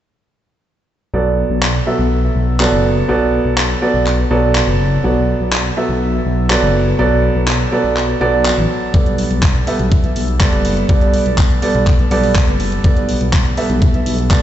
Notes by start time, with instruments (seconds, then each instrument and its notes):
1.14 detuned saw bass B1, felt piano F#3 B3 A4 D5
1.50 detuned saw bass B1
1.62 clap
1.87 felt piano F#3 B3 A4 E5
1.99 detuned saw bass B1
2.35 detuned saw bass B1
2.60 felt piano F#3 B3 A4 D5, clap
2.72 detuned saw bass F#1
3.09 detuned saw bass B1, felt piano F#3 B3 A4 D5
3.45 detuned saw bass B1
3.58 clap
3.82 felt piano F#3 B3 A4 D5
3.94 detuned saw bass B1
4.06 clap
4.31 detuned saw bass B1, felt piano F#3 B3 A4 D5
4.55 clap
4.67 detuned saw bass F#1
5.04 detuned saw bass B1, felt piano F#3 B3 A4 D5
5.41 detuned saw bass B1
5.53 clap
5.77 felt piano F#3 B3 A4 E5
5.89 detuned saw bass B1
6.26 detuned saw bass B1
6.50 felt piano F#3 B3 A4 D5, clap
6.62 detuned saw bass F#1
6.99 detuned saw bass B1, felt piano F#3 B3 A4 D5
7.35 detuned saw bass B1
7.48 clap
7.72 felt piano F#3 B3 A4 D5
7.84 detuned saw bass B1
7.96 clap
8.21 detuned saw bass B1, felt piano F#3 B3 A4 D5
8.45 clap
8.57 detuned saw bass A1
8.94 detuned saw bass B1, felt piano G3 B3 A4 D5, kick, closed hi-hat
9.06 closed hi-hat
9.18 open hi-hat
9.31 detuned saw bass B1, closed hi-hat
9.43 kick, clap, closed hi-hat
9.55 closed hi-hat
9.67 felt piano G3 B3 A4 E5, open hi-hat
9.79 detuned saw bass B1, closed hi-hat
9.92 kick, closed hi-hat
10.04 closed hi-hat
10.16 detuned saw bass B1, open hi-hat
10.28 closed hi-hat
10.40 felt piano G3 B3 A4 D5, kick, clap, closed hi-hat
10.53 detuned saw bass F#1, closed hi-hat
10.65 open hi-hat
10.77 closed hi-hat
10.89 detuned saw bass B1, felt piano G3 B3 A4 D5, kick, closed hi-hat
11.01 closed hi-hat
11.14 open hi-hat
11.26 detuned saw bass B1, closed hi-hat
11.38 kick, clap, closed hi-hat
11.50 closed hi-hat
11.62 felt piano G3 B3 A4 D5, open hi-hat
11.75 detuned saw bass B1, closed hi-hat
11.87 kick, clap, closed hi-hat
11.99 closed hi-hat
12.11 detuned saw bass B1, felt piano G3 B3 A4 D5, open hi-hat
12.23 open hi-hat
12.36 kick, clap, closed hi-hat
12.48 detuned saw bass F#1, closed hi-hat
12.60 open hi-hat
12.72 closed hi-hat
12.84 detuned saw bass B1, felt piano G3 B3 A4 D5, kick, closed hi-hat
12.97 closed hi-hat
13.09 open hi-hat
13.21 detuned saw bass B1, closed hi-hat
13.33 kick, clap, closed hi-hat
13.45 closed hi-hat
13.57 felt piano G3 B3 A4 E5, open hi-hat
13.70 detuned saw bass B1, closed hi-hat
13.82 kick, closed hi-hat
13.94 closed hi-hat
14.06 detuned saw bass B1, open hi-hat
14.18 closed hi-hat
14.31 felt piano G3 B3 A4 D5, kick, clap, closed hi-hat